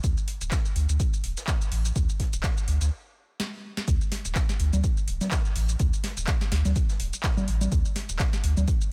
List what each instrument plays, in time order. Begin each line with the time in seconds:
0.04 sub bass D2, kick, closed hi-hat, shaker
0.17 shaker
0.27 closed hi-hat, open hi-hat
0.41 sub bass D1, closed hi-hat, shaker
0.51 kick, snare, clap, closed hi-hat, shaker
0.65 shaker
0.75 sub bass D2, closed hi-hat, open hi-hat
0.89 sub bass D2, closed hi-hat, shaker
1.00 kick, closed hi-hat, shaker
1.13 shaker
1.24 sub bass D1, closed hi-hat, open hi-hat
1.37 snare, closed hi-hat, shaker
1.47 kick, snare, clap, closed hi-hat, shaker
1.61 shaker
1.72 sub bass A1, open hi-hat
1.85 closed hi-hat, shaker
1.96 sub bass D2, kick, closed hi-hat, shaker
2.09 closed hi-hat, shaker
2.20 kick, snare, closed hi-hat, open hi-hat
2.33 sub bass D1, closed hi-hat, shaker
2.43 kick, snare, clap, closed hi-hat, shaker
2.57 shaker
2.68 sub bass D2, closed hi-hat, open hi-hat
2.81 sub bass D2, snare, closed hi-hat, shaker
3.40 snare
3.77 snare
3.88 sub bass D2, kick, closed hi-hat, shaker
4.01 shaker
4.11 snare, closed hi-hat, open hi-hat
4.25 sub bass D1, closed hi-hat, shaker
4.35 kick, snare, clap, closed hi-hat, shaker
4.49 snare, shaker
4.59 sub bass D2, closed hi-hat, open hi-hat
4.73 sub bass D2, closed hi-hat, low conga, shaker
4.83 kick, closed hi-hat, shaker
4.97 shaker
5.07 sub bass D1, closed hi-hat, open hi-hat
5.21 snare, closed hi-hat, low conga, shaker
5.31 kick, snare, clap, closed hi-hat, shaker
5.45 shaker
5.56 sub bass A1, open hi-hat
5.69 closed hi-hat, shaker
5.79 sub bass D2, kick, closed hi-hat, shaker
5.93 closed hi-hat, shaker
6.04 snare, closed hi-hat, open hi-hat
6.17 sub bass D1, closed hi-hat, shaker
6.27 kick, snare, clap, closed hi-hat, shaker
6.41 snare, shaker
6.52 sub bass D2, snare, closed hi-hat, open hi-hat
6.65 sub bass D2, snare, closed hi-hat, low conga, shaker
6.75 kick, closed hi-hat, shaker
6.89 snare, shaker
6.99 sub bass D1, closed hi-hat, open hi-hat
7.13 closed hi-hat, shaker
7.23 kick, snare, clap, closed hi-hat, shaker
7.37 low conga, shaker
7.48 sub bass A1, closed hi-hat, open hi-hat
7.61 closed hi-hat, low conga, shaker
7.72 sub bass D2, kick, closed hi-hat, shaker
7.85 shaker
7.95 snare, closed hi-hat, open hi-hat
8.09 sub bass D1, closed hi-hat, shaker
8.19 kick, snare, clap, closed hi-hat, shaker
8.33 snare, shaker
8.44 sub bass D2, closed hi-hat, open hi-hat
8.57 sub bass D2, closed hi-hat, low conga, shaker
8.68 kick, closed hi-hat, shaker
8.81 shaker